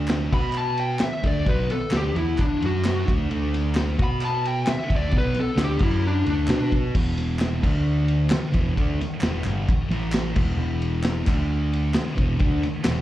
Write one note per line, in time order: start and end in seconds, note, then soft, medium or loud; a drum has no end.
0.00 0.29 D2 loud
0.00 0.32 D3 medium
0.00 0.31 A3 loud
0.00 0.32 D4 loud
0.07 snare loud
0.07 clap loud
0.07 ride loud
0.32 0.97 B2 loud
0.32 1.00 B3 medium
0.32 1.01 F#4 loud
0.32 1.01 B4 loud
0.32 0.56 B5 medium
0.32 kick loud
0.32 crash medium
0.53 clap medium
0.57 0.79 A5 medium
0.78 1.02 G5 medium
0.78 ride medium
0.99 1.24 E5 loud
0.99 muted fingered electric bass stroke soft
0.99 muted distorted electric guitar stroke soft
0.99 snare loud
0.99 clap medium
0.99 ride loud
1.12 snare soft
1.23 1.45 D2 loud
1.23 1.44 D3 medium
1.23 1.45 A3 medium
1.23 1.46 D4 loud
1.23 kick medium
1.23 ride medium
1.27 1.48 D5 medium
1.45 1.68 B1 loud
1.45 1.68 B2 medium
1.45 1.69 F#3 loud
1.45 1.69 B3 loud
1.45 1.70 B4 medium
1.45 kick loud
1.45 ride medium
1.69 1.93 A4 loud
1.69 muted distorted electric guitar stroke medium
1.69 muted fingered electric bass stroke soft
1.69 snare soft
1.69 ride medium
1.91 2.14 D2 medium
1.91 2.13 D3 medium
1.91 2.14 A3 medium
1.91 2.15 D4 loud
1.91 snare loud
1.91 clap loud
1.91 ride medium
1.97 2.17 G4 medium
2.13 2.37 E2 loud
2.13 2.37 E3 medium
2.13 2.37 B3 loud
2.13 2.38 E4 loud
2.13 ride medium
2.17 2.39 E4 medium
2.37 2.61 D4 loud
2.37 muted distorted electric guitar stroke medium
2.37 kick loud
2.37 clap medium
2.37 ride loud
2.60 3.05 F#2 medium
2.60 3.05 F#3 medium
2.60 3.06 C#4 loud
2.60 3.06 F#4 loud
2.60 ride medium
2.66 3.08 F#4 loud
2.84 snare loud
2.84 clap medium
2.84 ride loud
3.05 3.29 D2 loud
3.05 3.28 D3 medium
3.05 3.29 A3 loud
3.05 3.29 D4 loud
3.05 kick loud
3.05 ride medium
3.29 3.94 D2 medium
3.29 3.97 D3 loud
3.29 3.98 A3 loud
3.29 3.98 D4 loud
3.29 ride medium
3.54 snare soft
3.54 ride medium
3.75 snare loud
3.75 clap medium
3.75 ride loud
3.98 4.63 B2 loud
3.98 4.66 B3 loud
3.98 4.66 F#4 loud
3.98 4.67 B4 loud
3.98 kick loud
3.98 ride medium
4.04 4.23 B5 loud
4.21 4.45 A5 medium
4.21 clap medium
4.21 ride loud
4.45 4.68 G5 medium
4.45 ride medium
4.66 4.89 E5 loud
4.66 muted fingered electric bass stroke soft
4.66 muted distorted electric guitar stroke medium
4.66 snare loud
4.66 clap medium
4.66 ride loud
4.90 5.11 D2 loud
4.90 5.12 D3 medium
4.90 5.12 A3 loud
4.90 5.13 D4 medium
4.90 kick medium
4.90 ride medium
4.96 5.15 D5 medium
5.11 5.33 B1 loud
5.11 5.34 B2 loud
5.11 5.35 F#3 loud
5.11 5.35 B3 loud
5.11 kick loud
5.11 ride loud
5.18 5.37 B4 loud
5.34 muted fingered electric bass stroke soft
5.34 muted distorted electric guitar stroke medium
5.34 snare soft
5.34 ride medium
5.40 5.60 A4 loud
5.56 5.78 D2 medium
5.56 5.79 D3 medium
5.56 5.80 A3 loud
5.56 5.80 D4 medium
5.56 snare loud
5.56 clap loud
5.56 ride loud
5.64 5.83 G4 medium
5.79 6.23 F#2 loud
5.79 6.25 F#3 medium
5.79 6.25 C#4 loud
5.79 6.26 F#4 loud
5.79 kick loud
5.79 crash medium
5.83 6.04 E4 loud
6.07 6.27 D4 medium
6.26 6.47 D2 loud
6.26 6.48 D3 medium
6.26 6.48 A3 loud
6.26 6.48 D4 loud
6.26 ride medium
6.30 6.72 D4 loud
6.47 6.90 B2 loud
6.47 6.94 B3 medium
6.47 6.94 F#4 medium
6.47 6.94 B4 medium
6.47 snare loud
6.47 clap loud
6.47 ride loud
6.60 snare soft
6.72 kick medium
6.72 ride medium
6.95 7.59 E1 loud
6.95 7.62 E2 loud
6.95 7.62 B2 loud
6.95 7.62 E3 loud
6.95 kick loud
6.95 crash loud
7.18 snare soft
7.18 ride medium
7.39 snare loud
7.39 clap loud
7.39 ride loud
7.63 8.27 D2 loud
7.63 8.30 D3 loud
7.63 8.30 A3 medium
7.63 8.30 D4 loud
7.63 kick loud
7.63 crash loud
8.08 ride medium
8.30 muted distorted electric guitar stroke soft
8.30 snare loud
8.30 clap loud
8.30 ride loud
8.42 snare soft
8.52 8.75 E1 loud
8.52 8.75 E2 medium
8.52 8.75 B2 loud
8.52 8.75 E3 medium
8.52 kick medium
8.52 ride medium
8.76 8.98 D2 loud
8.76 8.98 D3 loud
8.76 8.98 A3 loud
8.76 8.99 D4 loud
8.76 kick medium
8.76 ride loud
8.98 muted fingered electric bass stroke soft
8.98 muted distorted electric guitar stroke medium
8.98 snare soft
8.98 ride medium
9.21 9.43 E1 medium
9.21 9.44 E2 medium
9.21 9.44 B2 medium
9.21 9.45 E3 loud
9.21 snare loud
9.21 clap loud
9.21 ride loud
9.44 9.66 G1 loud
9.44 9.67 G2 medium
9.44 9.68 D3 loud
9.44 clap medium
9.44 ride medium
9.48 9.68 G3 loud
9.69 muted distorted electric guitar stroke medium
9.69 kick loud
9.69 ride loud
9.89 10.32 A1 medium
9.89 10.35 A2 loud
9.89 10.35 E3 loud
9.89 10.35 A3 loud
9.89 ride medium
10.12 snare loud
10.12 clap medium
10.12 ride loud
10.36 10.57 E1 loud
10.36 10.57 E2 loud
10.36 10.58 B2 loud
10.36 10.58 E3 loud
10.36 kick loud
10.36 crash loud
10.57 11.22 E1 loud
10.57 11.26 E2 loud
10.57 11.26 B2 loud
10.57 11.26 E3 loud
10.82 ride medium
11.03 snare loud
11.03 clap loud
11.03 ride loud
11.27 11.91 D2 loud
11.27 11.94 D3 loud
11.27 11.95 A3 loud
11.27 11.95 D4 loud
11.27 kick loud
11.27 clap medium
11.27 crash medium
11.73 ride medium
11.94 muted distorted electric guitar stroke medium
11.94 snare loud
11.94 clap medium
11.94 ride loud
12.06 snare soft
12.16 12.38 E1 loud
12.16 12.38 E2 medium
12.16 12.39 B2 medium
12.16 12.39 E3 loud
12.16 kick medium
12.16 ride medium
12.39 12.61 D2 loud
12.39 12.61 D3 medium
12.39 12.62 A3 loud
12.39 12.62 D4 loud
12.39 kick loud
12.39 ride medium
12.63 muted distorted electric guitar stroke medium
12.63 muted fingered electric bass stroke soft
12.63 ride medium
12.84 13.02 E1 medium
12.84 13.02 E2 loud
12.84 13.02 B2 medium
12.84 13.02 E3 loud
12.84 snare loud
12.84 clap loud
12.84 ride loud